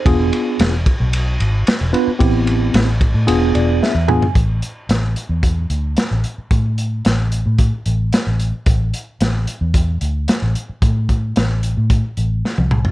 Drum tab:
RD |x-x-x-x-x-x-x-x-|x-x-x-x-x-x-----|----------------|----------------|
HH |----------------|----------------|x-x-x-x-x-x-x-x-|x-x-x-x-x-x-x-x-|
SD |----o-------o---|----o-------o---|----o-------o---|----o-------o---|
T1 |----------------|----------------|----------------|----------------|
T2 |----------------|--------------o-|----------------|----------------|
FT |----------------|---------------o|----------------|----------------|
BD |o-----o---------|o-----o---------|o-------o-------|o-------o-------|

RD |----------------|----------------|
HH |x-x-x-x-x-x-x-x-|x-x-x-x-x-x-----|
SD |----o-------o---|----o-------o---|
T1 |----------------|-------------o--|
T2 |----------------|--------------o-|
FT |----------------|---------------o|
BD |o-------o-------|o-o-----o-------|